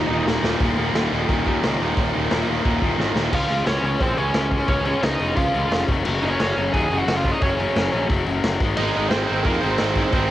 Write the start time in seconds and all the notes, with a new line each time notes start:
Already playing: D#2 A#2 D#3 G3 A#3 D#4 D#5
0.09 D#1 D#2 A#2 D#3
0.26 D#1 D#2 A#2 D#3, snare
0.43 D#1 D#2 A#2 D#3 G3 A#3 D#4, snare
0.60 D#1 D#2 A#2 D#3, kick, open hi-hat
0.77 D#1 D#2 A#2 D#3
0.94 D#1 D#2 A#2 D#3, snare, open hi-hat
1.11 D#1 D#2 A#2 D#3
1.28 D#1 D#2 A#2 D#3, kick, open hi-hat
1.46 D#2 A#2 D#3, kick
1.63 C#2 D#2 A#2 D#3, snare, open hi-hat
1.80 D#1 D#2 A#2 D#3
1.95 D#1 D#2 A#2 D#3, kick, open hi-hat
2.12 D#1 D#2 A#2 D#3
2.29 D#1 D#2 A#2 D#3, snare, open hi-hat
2.47 D#1 D#2 A#2 D#3
2.63 D#1 D#2 A#2 D#3, kick, open hi-hat
2.81 D#1 D#2 A#2 D#3, kick
2.97 G#1 D#2 A#2 D#3, snare
3.14 D#1 D#2 A#2 D#3, snare
3.31 C#2 C#3 G#3 C#4, kick, crash
3.35 F4 F5
3.48 C#2 C#3 G#3 C#4, open hi-hat
3.64 C#2 C#3 G#3 C#4 C#5, snare, open hi-hat
3.82 C#2 C#3 G#3 C#4 C#5, open hi-hat
3.87 C#4
3.99 A#1 C#3 G#3 C4 C#4 C5, kick, open hi-hat
4.17 C#2 C#3 G#3 C#4 C#5, open hi-hat
4.34 C#2 C#3 G#3 C#4, snare, open hi-hat
4.51 C#3 G#3 C#4, kick, open hi-hat
4.68 C#2 C#3 G#3 C#4 C#5, kick, open hi-hat
4.85 C#3 G#3 C#4 C#5, open hi-hat
5.01 C#2 C#3 G#3 C#4 D#4 D#5, snare, open hi-hat
5.20 F1 C#3 G#3 C#4, open hi-hat
5.36 C#2 C#3 G#3 C#4 F4 F5, kick, open hi-hat
5.54 C#2 C#3 G#3 C#4, open hi-hat
5.70 F1 C#3 G#3 C#4, snare, open hi-hat
5.88 F#1 F#2 C#3 F#3, kick, open hi-hat
6.04 F#1 F#2 C#3 F#3, crash
6.22 F#1 F#2 C#3 F#3 D#4 D#5, open hi-hat
6.30 C#4 C#5
6.39 F#1 F#2 C#3 F#3 C#4 C#5, snare, open hi-hat
6.55 F#1 F#2 C#3 F#3, open hi-hat
6.73 D#2 F#2 C#3 F#3 G#4 G#5, kick, open hi-hat
6.90 F#1 F#2 C#3 F#3, open hi-hat
6.98 F#4 F#5
7.07 F#1 F#2 C#3 F#3, snare, open hi-hat
7.16 F4 F5
7.24 F#2 C#3 F#3, kick, open hi-hat
7.32 D#4 D#5
7.42 F#1 F#2 C#3 F#3 C#4 C#5, kick, open hi-hat
7.58 F#2 C#3 F#3, open hi-hat
7.75 F#1 F#2 C#3 F#3, snare, open hi-hat
7.93 A#1 F#2 C#3 F#3, open hi-hat
8.09 F#1 F#2 C#3 F#3, kick, open hi-hat
8.26 F#1 F#2 C#3 F#3, open hi-hat
8.43 F#1 F#2 C#3 F#3, snare, open hi-hat
8.60 G#1 G#2 D#3 G#3, kick, open hi-hat
8.77 G#1 G#2 D#3 G#3 D#4 D#5, crash
8.94 G#1 G#2 D#3 G#3, open hi-hat
9.10 D#3 G#3 C4 C5, snare, open hi-hat
9.14 G#1 G#2
9.27 G#1 G#2 D#3 C4 C5, open hi-hat
9.31 G#3
9.44 F2 G#2 D#3 G#3 A#3 A#4, kick, open hi-hat
9.61 G#1 G#2 D#3 G#3 C4 C5, open hi-hat
9.78 G#1 G#2 D#3 G#3, snare, open hi-hat
9.95 G#2 D#3 G#3, kick, open hi-hat
10.13 G#1 G#2 D#3 G#3 C4 C5, kick, open hi-hat